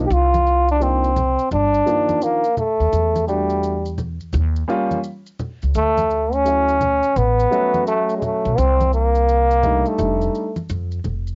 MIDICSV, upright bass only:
0, 0, Header, 1, 2, 480
1, 0, Start_track
1, 0, Tempo, 705882
1, 71, Time_signature, 4, 2, 24, 8
1, 7718, End_track
2, 0, Start_track
2, 0, Title_t, "Upright bass"
2, 0, Program_c, 0, 32
2, 71, Note_on_c, 0, 36, 98
2, 918, Note_off_c, 0, 36, 0
2, 1031, Note_on_c, 0, 31, 86
2, 1223, Note_off_c, 0, 31, 0
2, 1905, Note_on_c, 0, 39, 78
2, 1973, Note_off_c, 0, 39, 0
2, 1990, Note_on_c, 0, 40, 94
2, 2838, Note_off_c, 0, 40, 0
2, 2951, Note_on_c, 0, 39, 100
2, 3143, Note_off_c, 0, 39, 0
2, 3828, Note_on_c, 0, 37, 76
2, 3895, Note_off_c, 0, 37, 0
2, 3911, Note_on_c, 0, 38, 100
2, 4759, Note_off_c, 0, 38, 0
2, 4871, Note_on_c, 0, 33, 92
2, 5064, Note_off_c, 0, 33, 0
2, 5748, Note_on_c, 0, 35, 89
2, 5815, Note_off_c, 0, 35, 0
2, 5835, Note_on_c, 0, 36, 101
2, 6681, Note_off_c, 0, 36, 0
2, 6793, Note_on_c, 0, 29, 95
2, 6985, Note_off_c, 0, 29, 0
2, 7274, Note_on_c, 0, 41, 96
2, 7465, Note_off_c, 0, 41, 0
2, 7512, Note_on_c, 0, 29, 67
2, 7704, Note_off_c, 0, 29, 0
2, 7718, End_track
0, 0, End_of_file